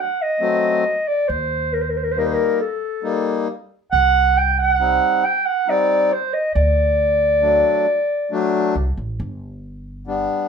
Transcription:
0.00 clarinet F#5
0.22 clarinet D#5
0.40 accordion F#3 A3 C4
1.08 clarinet D5
1.28 upright bass D#2, clarinet C5
1.73 clarinet A#4
1.81 clarinet C5
1.90 clarinet A#4
1.97 clarinet C5
2.04 clarinet A#4
2.12 clarinet C5
2.16 accordion G3 A#3 D#4, clarinet A#4
2.26 clarinet C5
2.34 clarinet A#4
2.61 clarinet A4
3.03 accordion G3 A#3 D#4
3.92 upright bass C2, clarinet F#5
4.38 clarinet G5
4.59 clarinet F#5
4.79 accordion G3 C4 D#4
5.25 clarinet G5
5.46 clarinet F#5
5.68 accordion G3 C4 D#4, clarinet D5
6.13 clarinet C5
6.34 clarinet D#5
6.55 upright bass D2, clarinet D5
7.41 accordion F#3 A3 D4
8.31 accordion F#3 A3 D4
8.75 upright bass C2
8.97 upright bass A1
9.20 upright bass G1
10.07 accordion G3 B3 D4

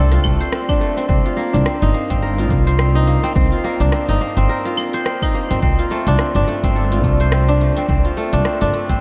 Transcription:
Already playing: upright bass C2, kora A3 C4 D4 F4 A4, singing bowl G4
0.12 kora F4, cross-stick, open hi-hat, shaker
0.24 upright bass C2, kora A3, kick, claves, shaker
0.41 kora C5, open hi-hat, shaker
0.52 kora C4, cross-stick, shaker
0.69 kora D4, kick, open hi-hat, claves, shaker
0.81 kora A3, shaker
0.97 kora C4, open hi-hat, shaker
1.09 upright bass C2, kora C4, kick, shaker
1.25 kora F4, open hi-hat
1.37 kora A#3, shaker
1.53 upright bass C2, kora D4, open hi-hat, shaker
1.65 kora C4, cross-stick, shaker
1.82 upright bass G1, kora D#4, open hi-hat
1.94 kora A#3, shaker
2.10 upright bass G1, kora C4, kick, open hi-hat, shaker
2.22 kora A#4, shaker
2.38 kora F4, open hi-hat, shaker
2.50 upright bass C2, kora A#3, kick, shaker
2.67 kora C5, open hi-hat, shaker
2.79 kora C4, cross-stick, shaker
2.95 kora D#4, open hi-hat, shaker
3.07 kora A#3, shaker
3.23 kora C4, open hi-hat, shaker
3.35 upright bass C2, kora C4, kick, shaker
3.52 kora F4, open hi-hat
3.64 kora A#3, shaker
3.80 upright bass C2, kora D4, open hi-hat, shaker
3.92 kora C4, cross-stick, shaker
4.09 upright bass G1, kora D#4, open hi-hat
4.21 kora A#3, shaker
4.37 upright bass G1, kora C4, open hi-hat, shaker
4.49 kora A#4, shaker
4.65 kora F4, cross-stick, open hi-hat, shaker
4.77 kora A#3, claves, shaker
4.93 kora C5, open hi-hat, shaker
5.06 kora C4, cross-stick, shaker
5.22 kora D#4, kick, open hi-hat, claves, shaker
5.34 kora A#3, shaker
5.51 upright bass G1, kora C4, open hi-hat, shaker
5.62 upright bass C2, kora C4, kick, shaker
5.79 kora F4, open hi-hat
5.91 kora A3, shaker
6.07 upright bass C2, kora D4, open hi-hat, shaker
6.19 kora C4, cross-stick, shaker
6.35 upright bass G1, kora D4, open hi-hat
6.47 kora A3, shaker
6.64 upright bass G1, kora C4, kick, open hi-hat, shaker
6.75 kora A4, shaker
6.92 kora F4, open hi-hat, shaker
7.04 upright bass C2, kora A3, kick, shaker
7.20 kora C5, open hi-hat, shaker
7.32 kora C4, cross-stick, shaker
7.48 kora D4, open hi-hat, shaker
7.61 kora A3, shaker
7.77 kora C4, open hi-hat, shaker
7.89 upright bass C2, kora C4, kick, shaker
8.05 kora F4, open hi-hat
8.17 kora A3, shaker
8.33 upright bass C2, kora D4, open hi-hat, shaker
8.45 kora C4, cross-stick, shaker
8.61 upright bass G1, kora D4, open hi-hat, shaker
8.73 kora A3, shaker
8.89 upright bass G1, kora C4, kick, open hi-hat, shaker

